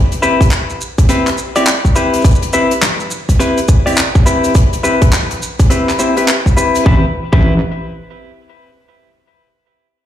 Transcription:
0.12 closed hi-hat, shaker
0.22 C4 E4 G4 B4, shaker
0.41 kick, closed hi-hat, shaker
0.51 clap, closed hi-hat, shaker
0.70 shaker
0.81 shaker
0.98 kick, closed hi-hat, shaker
1.09 C4 E4 G4 B4, closed hi-hat, shaker
1.27 clap, closed hi-hat, shaker
1.38 shaker
1.56 C4 E4 G4 D5, closed hi-hat, shaker
1.67 clap, closed hi-hat, shaker
1.85 kick, shaker
1.96 C4 E4 G4 B4, shaker
2.14 closed hi-hat, shaker
2.21 kick, closed hi-hat, shaker
2.25 shaker
2.31 shaker
2.35 shaker
2.42 closed hi-hat, shaker
2.53 C4 E4 G4 B4, shaker
2.71 closed hi-hat, shaker
2.82 clap, snare, closed hi-hat, shaker
3.00 shaker
3.11 shaker
3.29 kick, closed hi-hat, shaker
3.39 C4 E4 G4 B4, closed hi-hat, shaker
3.58 closed hi-hat, shaker
3.68 kick, shaker
3.86 C4 E4 G4 D5, closed hi-hat, shaker
3.89 shaker
3.92 shaker
3.95 shaker
3.98 clap, closed hi-hat, shaker
4.15 kick, shaker
4.26 C4 E4 G4 B4, shaker
4.44 closed hi-hat, shaker
4.55 kick, closed hi-hat, shaker
4.73 closed hi-hat, shaker
4.83 C4 E4 G4 B4, shaker
5.02 kick, closed hi-hat, shaker
5.12 clap, snare, closed hi-hat, shaker
5.31 closed hi-hat, shaker
5.42 shaker
5.59 kick, closed hi-hat, shaker
5.70 C4 E4 G4 B4, closed hi-hat, shaker
5.89 clap, closed hi-hat, shaker
5.99 C4 E4 G4 C5, shaker
6.17 C4 E4 G4 B4, closed hi-hat, shaker
6.28 clap, closed hi-hat, shaker
6.46 kick, shaker
6.57 C4 E4 G4 B4, shaker
6.75 closed hi-hat, shaker
6.85 A1 C4 E4 G4 B4, kick
7.33 A1 C4 E4 G4 B4, kick

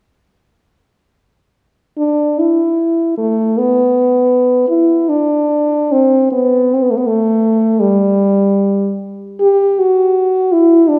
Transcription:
1.98 D4
2.39 E4
3.17 A3
3.58 B3
4.69 E4
5.09 D4
5.91 C4
6.31 B3
6.73 C4
6.83 B3
6.90 A3
6.97 B3
7.07 A3
7.80 G3
9.40 G4
9.79 F#4
10.52 E4
10.88 D4

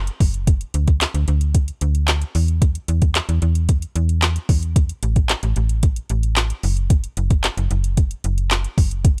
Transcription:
0.07 closed hi-hat
0.20 F#1, kick, open hi-hat
0.34 closed hi-hat
0.47 kick, closed hi-hat
0.61 closed hi-hat
0.74 D2, closed hi-hat
0.88 kick, closed hi-hat
1.01 snare, clap, closed hi-hat
1.14 D2, closed hi-hat
1.28 D2, closed hi-hat
1.41 closed hi-hat
1.55 kick, closed hi-hat
1.68 closed hi-hat
1.81 D2, closed hi-hat
1.95 closed hi-hat
2.08 snare, clap, closed hi-hat
2.22 closed hi-hat
2.35 E2, open hi-hat
2.48 closed hi-hat
2.62 kick, closed hi-hat
2.75 closed hi-hat
2.88 E2, closed hi-hat
3.02 kick, closed hi-hat
3.15 snare, clap, closed hi-hat
3.29 E2, closed hi-hat
3.42 E2, closed hi-hat
3.55 closed hi-hat
3.69 kick, closed hi-hat
3.82 closed hi-hat
3.96 E2, closed hi-hat
4.09 closed hi-hat
4.22 snare, clap, closed hi-hat
4.36 closed hi-hat
4.49 E2, kick, open hi-hat
4.63 closed hi-hat
4.76 kick, closed hi-hat
4.89 closed hi-hat
5.03 A1, closed hi-hat
5.16 kick, closed hi-hat
5.29 snare, clap, closed hi-hat
5.43 A1, closed hi-hat
5.56 A1, closed hi-hat
5.69 closed hi-hat
5.83 kick, closed hi-hat
5.96 closed hi-hat
6.10 A1, closed hi-hat
6.23 closed hi-hat
6.36 snare, clap, closed hi-hat
6.50 closed hi-hat
6.63 F#1, open hi-hat
6.77 closed hi-hat
6.90 kick, closed hi-hat
7.04 closed hi-hat
7.17 F#1, closed hi-hat
7.30 kick, closed hi-hat
7.44 snare, clap, closed hi-hat
7.57 F#1, closed hi-hat
7.71 F#1, closed hi-hat
7.84 closed hi-hat
7.97 kick, closed hi-hat
8.11 closed hi-hat
8.24 F#1, closed hi-hat
8.38 closed hi-hat
8.51 snare, clap, closed hi-hat
8.64 closed hi-hat
8.78 F#1, kick, open hi-hat
8.91 closed hi-hat
9.05 kick, closed hi-hat

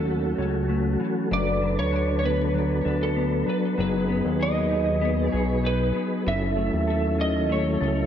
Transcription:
Already playing: D#2 F#3 A3 C#4 F#4 A4
0.38 C#2 C#4
0.69 A3
1.00 E3
1.31 F#1 F#3 D4 B4 D5
1.62 F#3
1.78 D2 C#5
1.92 D4
2.19 C#5
2.23 B3 B4
2.54 F#3
2.85 D2 D4
3.03 A4
3.16 B3
3.47 F#3 B4
3.78 F#1 F#3 D#4 G#4 B4
4.09 B3
4.25 D#2
4.39 G#4 D#5
4.71 D#4
5.01 B3
5.28 G#4 C#5
5.33 B1
5.63 D#4 B4
5.95 B3
6.26 F#1 C#4 E4 A4 E5
6.57 A3
6.73 D#2
6.87 A4
7.18 C#4 D#5
7.49 A3 C#5
7.81 C#2 A4

